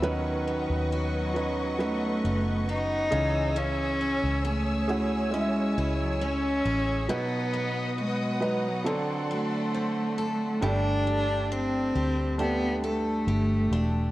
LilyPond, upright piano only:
<<
  \new Staff \with { instrumentName = "Upright piano" } { \time 4/4 \key b \mixolydian \tempo 4 = 68 <fis cis' dis' b'>4. <fis cis' dis' b'>8 <fis cis' dis' b'>4. <e cis' gis' cis''>8~ | <e cis' gis' cis''>4. <cis' e' fis' gis'>8 <gis cis' e' dis'' e''>2 | <fis b dis' b'>4. <fis b dis' b'>8 <fis c' d' a'>2 | \key c \lydian <a d' g'>2 <a d' g'>2 | }
  \new Staff \with { instrumentName = "Upright piano" } { \clef bass \time 4/4 \key b \mixolydian dis4. r2 cis8~ | cis4 r2. | b,4. r8 d4. r8 | \key c \lydian g,4. r2 r8 | }
>>